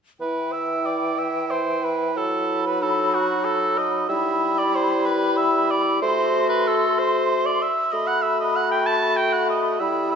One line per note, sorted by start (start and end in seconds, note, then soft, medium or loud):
0.20 2.18 E3 soft
0.20 2.82 E4 soft
0.20 0.54 B4 medium
0.20 2.11 G5 soft
0.53 0.88 E5 medium
0.86 1.20 D5 medium
1.19 1.52 E5 medium
1.51 1.86 C5 medium
1.85 2.19 B4 medium
2.15 4.08 F#3 medium
2.15 2.65 A4 medium
2.15 4.09 B5 soft
2.66 2.84 B4 medium
2.81 4.09 D#4 soft
2.81 3.16 A4 medium
3.14 3.46 F#4 medium
3.45 3.79 A4 medium
3.78 4.08 D#5 medium
4.09 5.98 G3 medium
4.09 5.98 E4 medium
4.09 4.60 E5 medium
4.09 5.98 B5 soft
4.59 4.77 D5 medium
4.76 5.08 C5 medium
5.06 5.39 B4 medium
5.37 5.72 E5 medium
5.71 6.01 D5 medium
6.02 7.63 A3 medium
6.02 7.63 F#4 medium
6.02 6.48 C5 medium
6.02 7.65 C6 soft
6.49 6.69 B4 medium
6.67 7.00 A4 medium
6.99 7.48 C5 medium
7.46 7.64 D5 medium
7.63 7.94 E5 medium
7.92 9.77 A3 medium
7.92 9.82 F#4 medium
7.92 8.09 D#5 medium
7.92 9.77 B5 soft
8.07 8.23 F#5 medium
8.22 8.38 E5 medium
8.40 8.57 D#5 medium
8.56 8.71 F#5 medium
8.71 8.88 G5 medium
8.87 9.18 A5 medium
9.17 9.35 G5 medium
9.33 9.49 F#5 medium
9.50 9.82 D#5 medium
9.80 10.15 G3 medium
9.80 10.15 E4 medium
9.80 10.11 E5 medium
9.80 10.15 B5 medium
10.11 10.15 E5 medium